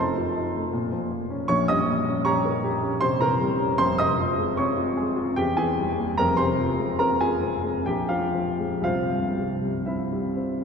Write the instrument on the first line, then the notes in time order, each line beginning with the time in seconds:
grand piano
Already playing: F1 F2 C3 F3 A3 A#4 A#5
0.00 D#4 C5 A5 C6
0.18 F4
0.37 D#4
0.56 A3
0.73 A#2
0.92 F3
1.11 A#3
1.30 C#4
1.48 A#1 A#2 C#5 C#6
1.68 G3 D#5 D#6
1.88 A#3
2.08 C#4
2.25 G4 C#5 A#5 C#6
2.45 A#4
2.64 G4
2.82 C#4
3.01 C3 C5 C6
3.21 E3 A#4 A#5
3.41 G3
3.59 C#4
3.78 F1 F2 C5 C6
3.98 C3 D#5 D#6
4.18 F3
4.38 G#3
4.57 C4 C#5 C#6
4.77 F4
4.97 G#4
5.16 F4
5.36 E2 G4 G5
5.57 E3 G#4 G#5
5.78 G3
5.97 A#3
6.18 F1 F2 A#4 A#5
6.37 C3 C5 C6
6.59 F3
6.79 G#3
6.99 C4 A#4 A#5
7.21 F4 G#4 G#5
7.42 C4
7.63 G#3
7.86 A#1 G4 G5
8.09 F2 F4 F5
8.35 F3
8.59 G#3
8.81 C2 F4 C5 F5
9.11 G2
9.37 C3
9.62 G3
9.86 C4 E4 C5 E5
10.13 G3
10.37 C4
10.61 G3